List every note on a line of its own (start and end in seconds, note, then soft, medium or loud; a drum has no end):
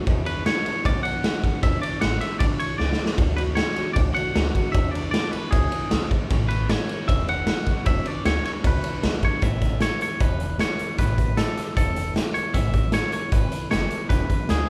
0.06 0.26 E2 medium
0.06 0.48 E2 loud
0.06 0.26 B2 loud
0.06 0.26 E3 medium
0.06 0.26 G#3 loud
0.06 0.26 D4 medium
0.06 0.24 E4 medium
0.06 kick loud
0.06 ride medium
0.25 0.43 E3 soft
0.25 0.44 G#3 medium
0.25 0.45 D4 soft
0.25 0.45 E4 soft
0.25 0.46 B4 medium
0.25 ride medium
0.45 0.65 E3 medium
0.45 0.65 G#3 medium
0.45 0.64 D4 medium
0.45 0.63 E4 medium
0.45 0.85 C#5 medium
0.45 snare loud
0.45 ride medium
0.65 0.84 E3 soft
0.65 0.84 G#3 soft
0.65 0.85 D4 medium
0.65 0.85 E4 medium
0.65 muted upright bass stroke medium
0.65 ride medium
0.84 1.26 B1 medium
0.84 1.04 E2 medium
0.84 1.04 B2 medium
0.84 1.04 E3 medium
0.84 1.04 G#3 medium
0.84 1.03 D4 medium
0.84 1.02 E4 medium
0.84 1.03 D5 loud
0.84 kick loud
0.84 ride medium
1.03 1.21 E3 soft
1.03 1.22 G#3 soft
1.03 1.23 D4 medium
1.03 1.23 E4 medium
1.03 1.63 F#5 loud
1.03 ride medium
1.23 1.43 E3 medium
1.23 1.43 G#3 medium
1.23 1.42 D4 medium
1.23 1.40 E4 medium
1.23 snare loud
1.23 ride medium
1.41 1.62 E3 soft
1.41 1.62 G#3 soft
1.41 1.63 D4 medium
1.41 1.62 E4 medium
1.41 kick medium
1.41 ride medium
1.62 1.82 E2 medium
1.62 1.77 E2 medium
1.62 1.82 B2 medium
1.62 1.82 E3 medium
1.62 1.83 G#3 medium
1.62 1.82 D4 medium
1.62 1.81 E4 medium
1.62 1.81 E5 loud
1.62 kick loud
1.62 ride medium
1.82 2.00 E3 soft
1.82 2.01 G#3 soft
1.82 2.02 D4 medium
1.82 2.02 E4 medium
1.82 2.01 D5 loud
1.82 muted upright bass stroke medium
1.82 ride medium
2.01 2.19 A1 medium
2.01 2.21 E3 medium
2.01 2.22 G#3 medium
2.01 2.21 D4 medium
2.01 2.20 E4 medium
2.01 2.20 F#5 loud
2.01 snare loud
2.01 ride medium
2.21 2.39 E3 medium
2.21 2.39 G#3 soft
2.21 2.40 D4 soft
2.21 2.40 E4 medium
2.21 2.39 E5 medium
2.21 muted upright bass stroke medium
2.21 snare soft
2.21 ride medium
2.39 2.57 B1 medium
2.39 2.59 E2 medium
2.39 2.60 B2 medium
2.39 2.60 E3 medium
2.39 2.60 G#3 medium
2.39 2.60 D4 loud
2.39 2.59 E4 medium
2.39 2.45 D5 medium
2.39 kick loud
2.39 ride medium
2.60 2.78 E3 soft
2.60 2.79 G#3 soft
2.60 2.79 D4 soft
2.60 2.80 E4 soft
2.60 2.78 C#5 loud
2.60 muted upright bass stroke medium
2.60 ride medium
2.78 2.96 C#2 medium
2.78 2.99 E3 medium
2.78 2.99 G#3 medium
2.78 2.98 D4 medium
2.78 2.97 E4 medium
2.78 3.06 D5 medium
2.78 snare medium
2.93 snare medium
2.98 3.18 E3 soft
2.98 3.19 G#3 soft
2.98 3.19 D4 medium
2.98 3.18 E4 medium
3.06 snare medium
3.18 3.59 D2 medium
3.18 3.38 D3 medium
3.18 3.39 A3 medium
3.18 3.38 D4 medium
3.18 3.37 F#4 medium
3.18 kick loud
3.18 ride medium
3.37 3.56 A3 soft
3.37 3.57 D4 soft
3.37 3.58 F#4 medium
3.37 3.42 B4 medium
3.37 ride medium
3.55 3.77 D3 medium
3.55 3.77 A3 medium
3.55 3.77 D4 medium
3.55 3.93 C#5 medium
3.55 snare loud
3.55 ride medium
3.76 3.95 A3 soft
3.76 3.95 D4 soft
3.76 3.96 F#4 soft
3.76 muted upright bass stroke medium
3.76 snare soft
3.76 ride medium
3.93 4.13 C#2 medium
3.93 4.16 D3 medium
3.93 4.16 A3 medium
3.93 4.15 D4 medium
3.93 4.14 F#4 medium
3.93 3.99 D5 medium
3.93 kick loud
3.93 ride medium
4.15 4.34 A3 soft
4.15 4.35 D4 soft
4.15 4.35 F#4 soft
4.15 4.72 F#5 loud
4.15 muted upright bass stroke medium
4.15 ride medium
4.34 4.52 D2 medium
4.34 4.54 D3 medium
4.34 4.55 A3 medium
4.34 4.54 D4 medium
4.34 4.53 F#4 medium
4.34 snare loud
4.34 ride medium
4.54 4.73 A3 soft
4.54 4.73 D4 soft
4.54 4.74 F#4 medium
4.54 kick medium
4.54 ride medium
4.72 4.93 E2 medium
4.72 5.16 E2 medium
4.72 4.93 B2 medium
4.72 4.94 E3 medium
4.72 4.94 G#3 medium
4.72 4.93 D4 medium
4.72 4.92 E4 medium
4.72 4.91 E5 loud
4.72 kick loud
4.72 ride medium
4.91 5.10 E3 soft
4.91 5.12 G#3 soft
4.91 5.13 D4 medium
4.91 5.13 E4 medium
4.91 5.10 D5 medium
4.91 ride medium
5.11 5.32 E3 medium
5.11 5.33 G#3 medium
5.11 5.32 D4 medium
5.11 5.31 E4 medium
5.11 5.31 D5 medium
5.11 snare loud
5.11 ride loud
5.31 5.52 E3 soft
5.31 5.52 G#3 soft
5.31 5.52 D4 soft
5.31 5.52 E4 medium
5.31 5.52 B4 medium
5.31 muted upright bass stroke medium
5.31 ride medium
5.51 5.69 C#2 medium
5.51 5.72 E2 medium
5.51 5.72 B2 medium
5.51 5.72 E3 medium
5.51 5.72 G#3 medium
5.51 5.71 D4 medium
5.51 5.70 E4 medium
5.51 6.06 G#4 medium
5.51 kick loud
5.51 ride loud
5.71 5.88 E3 soft
5.71 5.89 G#3 soft
5.71 5.90 D4 soft
5.71 5.91 E4 medium
5.71 muted upright bass stroke medium
5.71 ride medium
5.89 6.08 B1 medium
5.89 6.10 E3 medium
5.89 6.10 G#3 medium
5.89 6.09 D4 medium
5.89 6.08 E4 medium
5.89 snare loud
5.89 ride medium
6.09 6.29 E3 medium
6.09 6.30 G#3 medium
6.09 6.30 D4 medium
6.09 6.30 E4 medium
6.09 muted upright bass stroke medium
6.09 kick medium
6.09 ride medium
6.29 6.71 A1 medium
6.29 6.49 A2 medium
6.29 6.50 E3 medium
6.29 6.50 A3 loud
6.29 6.49 C#4 loud
6.29 6.48 E4 loud
6.29 kick loud
6.29 ride medium
6.49 6.68 A3 soft
6.49 6.69 C#4 soft
6.49 6.69 E4 medium
6.49 6.70 B4 medium
6.49 ride medium
6.68 6.88 E3 medium
6.68 6.89 A3 medium
6.68 6.88 C#4 medium
6.68 6.87 E4 medium
6.68 7.07 C#5 medium
6.68 snare loud
6.68 ride medium
6.88 7.08 A3 soft
6.88 7.09 C#4 soft
6.88 7.08 E4 soft
6.88 muted upright bass stroke medium
6.88 ride medium
7.08 7.50 E1 medium
7.08 7.28 A2 medium
7.08 7.28 E3 medium
7.08 7.28 A3 medium
7.08 7.27 C#4 medium
7.08 7.26 E4 loud
7.08 7.28 E5 medium
7.08 kick loud
7.08 ride medium
7.27 7.47 A3 soft
7.27 7.48 C#4 medium
7.27 7.47 E4 medium
7.27 7.86 F#5 loud
7.27 ride medium
7.47 7.67 E3 medium
7.47 7.67 A3 medium
7.47 7.67 C#4 medium
7.47 7.65 E4 medium
7.47 snare loud
7.47 ride medium
7.66 7.87 A3 soft
7.66 7.87 C#4 medium
7.66 7.86 E4 medium
7.66 muted upright bass stroke medium
7.66 kick medium
7.66 ride medium
7.86 8.00 E1 medium
7.86 8.06 E2 medium
7.86 8.06 B2 medium
7.86 8.06 E3 medium
7.86 8.06 G#3 medium
7.86 8.05 D4 medium
7.86 8.04 E4 medium
7.86 8.07 E5 loud
7.86 kick loud
7.86 ride medium
8.05 8.24 E3 soft
8.05 8.24 G#3 soft
8.05 8.25 D4 soft
8.05 8.25 E4 medium
8.05 8.26 D5 loud
8.05 muted upright bass stroke medium
8.05 ride medium
8.25 8.42 D2 loud
8.25 8.45 E3 medium
8.25 8.45 G#3 medium
8.25 8.45 D4 medium
8.25 8.43 E4 medium
8.25 8.44 C#5 loud
8.25 snare loud
8.25 ride medium
8.44 8.64 E3 soft
8.44 8.64 G#3 soft
8.44 8.65 D4 soft
8.44 8.64 E4 medium
8.44 8.51 C#5 medium
8.44 muted upright bass stroke medium
8.44 snare soft
8.44 ride medium
8.64 8.81 C#2 medium
8.64 8.84 E2 medium
8.64 8.84 B2 medium
8.64 8.84 E3 medium
8.64 8.84 G#3 medium
8.64 8.83 D4 medium
8.64 8.82 E4 loud
8.64 9.20 B4 medium
8.64 kick loud
8.64 ride loud
8.83 9.02 E3 soft
8.83 9.03 G#3 soft
8.83 9.04 D4 soft
8.83 9.03 E4 medium
8.83 muted upright bass stroke medium
8.83 ride medium
9.03 9.20 B1 medium
9.03 9.23 E3 medium
9.03 9.22 G#3 medium
9.03 9.22 D4 medium
9.03 9.21 E4 medium
9.03 snare loud
9.03 ride medium
9.22 9.41 E3 soft
9.22 9.42 G#3 soft
9.22 9.42 D4 medium
9.22 9.42 E4 medium
9.22 9.43 C#5 loud
9.22 kick medium
9.22 ride medium
9.42 9.83 A1 medium
9.42 9.62 A2 medium
9.42 9.62 E3 medium
9.42 9.62 A3 medium
9.42 9.61 C#4 medium
9.42 9.61 E4 medium
9.42 9.81 E5 loud
9.42 kick loud
9.42 snare soft
9.42 closed hi-hat medium
9.61 9.80 A3 soft
9.61 9.80 C#4 medium
9.61 9.81 E4 medium
9.61 kick medium
9.61 snare soft
9.61 closed hi-hat medium
9.80 10.00 A2 medium
9.80 10.00 E3 medium
9.80 10.01 A3 medium
9.80 10.01 C#4 medium
9.80 9.99 E4 medium
9.80 10.01 C#5 medium
9.80 snare loud
9.80 closed hi-hat medium
10.00 10.20 A3 soft
10.00 10.20 C#4 soft
10.00 10.20 E4 medium
10.00 10.21 C#5 medium
10.00 muted upright bass stroke medium
10.00 closed hi-hat medium
10.20 10.61 E1 medium
10.20 10.40 E3 medium
10.20 10.40 A3 medium
10.20 10.40 C#4 medium
10.20 10.38 E4 medium
10.20 10.60 B4 medium
10.20 kick loud
10.20 closed hi-hat medium
10.39 10.59 A3 soft
10.39 10.59 C#4 soft
10.39 10.59 E4 soft
10.39 closed hi-hat medium
10.59 10.79 A2 medium
10.59 10.79 E3 medium
10.59 10.79 A3 medium
10.59 10.78 C#4 medium
10.59 10.77 E4 medium
10.59 10.99 C#5 loud
10.59 snare loud
10.59 closed hi-hat medium
10.78 10.97 A3 soft
10.78 10.97 C#4 soft
10.78 10.97 E4 medium
10.78 muted upright bass stroke medium
10.78 closed hi-hat medium
10.97 11.39 A1 medium
10.97 11.17 A2 medium
10.97 11.17 E3 medium
10.97 11.18 A3 medium
10.97 11.17 C#4 medium
10.97 11.15 E4 medium
10.97 11.39 B4 loud
10.97 kick loud
10.97 snare soft
10.97 closed hi-hat medium
11.16 11.35 A3 soft
11.16 11.35 C#4 soft
11.16 11.36 E4 medium
11.16 kick medium
11.16 closed hi-hat medium
11.35 11.56 A2 medium
11.35 11.56 E3 medium
11.35 11.56 A3 medium
11.35 11.55 C#4 medium
11.35 11.53 E4 medium
11.35 11.76 A4 medium
11.35 snare loud
11.35 closed hi-hat medium
11.56 11.74 A3 soft
11.56 11.74 C#4 medium
11.56 muted upright bass stroke medium
11.56 snare soft
11.56 closed hi-hat medium
11.74 12.18 E1 medium
11.74 11.95 E3 medium
11.74 11.95 A3 medium
11.74 11.94 C#4 medium
11.74 11.92 E4 medium
11.74 12.13 A4 medium
11.74 kick loud
11.74 closed hi-hat medium
11.93 12.13 A3 soft
11.93 12.14 C#4 soft
11.93 12.14 E4 soft
11.93 closed hi-hat medium
12.14 12.34 A2 medium
12.14 12.34 E3 medium
12.14 12.34 A3 medium
12.14 12.34 C#4 medium
12.14 12.33 E4 medium
12.14 snare loud
12.14 closed hi-hat medium
12.34 12.53 A3 soft
12.34 12.54 C#4 soft
12.34 12.54 E4 medium
12.34 12.54 C#5 medium
12.34 muted upright bass stroke medium
12.34 closed hi-hat medium
12.53 12.95 A1 medium
12.53 12.73 A2 medium
12.53 12.74 E3 medium
12.53 12.74 A3 medium
12.53 12.73 C#4 medium
12.53 12.72 E4 medium
12.53 12.93 E5 loud
12.53 kick loud
12.53 snare soft
12.53 closed hi-hat medium
12.73 12.92 A3 soft
12.73 12.93 C#4 medium
12.73 12.93 E4 medium
12.73 kick medium
12.73 closed hi-hat medium
12.92 13.13 A2 medium
12.92 13.13 E3 medium
12.92 13.13 A3 medium
12.92 13.13 C#4 medium
12.92 13.11 E4 medium
12.92 13.12 C#5 loud
12.92 snare loud
12.92 closed hi-hat medium
13.12 13.31 A3 soft
13.12 13.31 C#4 medium
13.12 13.32 E4 medium
13.12 13.32 C#5 medium
13.12 muted upright bass stroke medium
13.12 closed hi-hat medium
13.31 13.49 G#1 medium
13.31 13.51 E3 medium
13.31 13.52 A3 medium
13.31 13.51 C#4 medium
13.31 13.49 E4 medium
13.31 13.70 B4 medium
13.31 kick loud
13.31 closed hi-hat medium
13.50 13.70 A3 soft
13.50 13.70 C#4 soft
13.50 13.71 E4 medium
13.50 muted upright bass stroke medium
13.50 closed hi-hat medium
13.70 13.88 F#1 medium
13.70 13.90 A2 medium
13.70 13.91 E3 medium
13.70 13.91 A3 medium
13.70 13.90 C#4 medium
13.70 13.89 E4 medium
13.70 14.09 C#5 medium
13.70 snare loud
13.70 closed hi-hat medium
13.90 14.10 A3 soft
13.90 14.10 C#4 soft
13.90 14.10 E4 soft
13.90 closed hi-hat medium
14.09 14.24 E1 medium
14.09 14.29 E2 medium
14.09 14.30 B2 medium
14.09 14.29 E3 medium
14.09 14.29 G#3 medium
14.09 14.28 D4 medium
14.09 14.27 E4 medium
14.09 14.50 B4 medium
14.09 kick loud
14.09 snare soft
14.09 closed hi-hat medium
14.28 14.49 E3 soft
14.28 14.49 G#3 soft
14.28 14.49 D4 soft
14.28 14.49 E4 medium
14.28 muted upright bass stroke medium
14.28 kick medium
14.28 closed hi-hat medium
14.49 14.66 D2 medium
14.49 14.69 E2 medium
14.49 14.69 B2 medium
14.49 14.69 E3 medium
14.49 14.69 G#3 medium
14.49 14.68 D4 medium
14.49 14.67 E4 medium
14.49 14.69 G#4 medium
14.49 snare loud
14.49 closed hi-hat medium